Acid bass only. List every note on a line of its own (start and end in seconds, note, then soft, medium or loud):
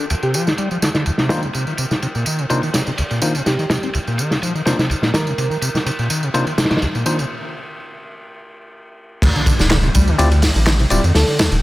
0.10 0.15 D2 medium
0.23 0.35 C3 medium
0.34 0.48 F3 medium
0.47 0.53 D3 medium
0.58 0.69 G3 medium
0.71 0.77 F3 medium
0.82 0.89 D3 loud
0.95 1.04 D3 medium
1.06 1.11 D2 loud
1.19 1.28 C3 medium
1.30 1.45 D#3 medium
1.43 1.49 C3 medium
1.54 1.65 C3 loud
1.67 1.73 D#3 medium
1.78 1.85 C3 loud
1.91 1.95 C3 medium
2.02 2.07 C3 medium
2.15 2.24 A#2 medium
2.27 2.41 D#3 medium
2.39 2.45 C3 medium
2.50 2.61 C3 loud
2.63 2.69 D#3 medium
2.75 2.82 C3 medium
2.87 2.91 C3 medium
2.98 3.03 C2 loud
3.11 3.20 A#2 medium
3.22 3.37 D#3 medium
3.35 3.41 C3 medium
3.46 3.57 C3 medium
3.59 3.65 D#3 medium
3.71 3.77 C3 medium
3.83 3.89 C4 medium
3.94 3.99 C2 medium
4.07 4.20 A#2 medium
4.19 4.33 D#3 medium
4.31 4.37 C3 medium
4.42 4.53 F3 medium
4.55 4.61 D#3 medium
4.66 4.73 C3 loud
4.79 4.88 C3 medium
4.90 4.94 C2 loud
5.02 5.12 A#2 medium
5.14 5.28 D#3 medium
5.27 5.33 C3 medium
5.38 5.48 C3 loud
5.50 5.57 D#3 medium
5.62 5.69 C3 loud
5.74 5.78 C3 loud
5.86 5.90 C3 medium
5.99 6.08 A#2 medium
6.10 6.24 D#3 medium
6.23 6.29 C3 medium
6.34 6.45 C3 loud
6.46 6.53 D#3 medium
6.58 6.65 C3 medium
6.71 6.75 C3 medium
6.82 6.86 C2 loud
6.95 7.04 A#2 medium
7.06 7.20 D#3 medium
7.19 7.25 C3 medium
9.23 9.29 D3 medium
9.36 9.42 D3 medium
9.47 9.54 D3 medium
9.59 9.63 D3 loud
9.71 9.77 D3 loud
9.83 9.89 C3 loud
9.95 10.09 G3 loud
10.08 10.17 D3 loud
10.19 10.26 D3 medium
10.32 10.45 D3 medium
10.43 10.53 D2 medium
10.55 10.59 D3 loud
10.67 10.74 D3 loud
10.80 10.86 C3 loud
10.91 11.06 G3 loud
11.04 11.13 D3 loud
11.15 11.25 D3 medium
11.27 11.41 D3 medium
11.39 11.49 D2 medium
11.51 11.55 D3 loud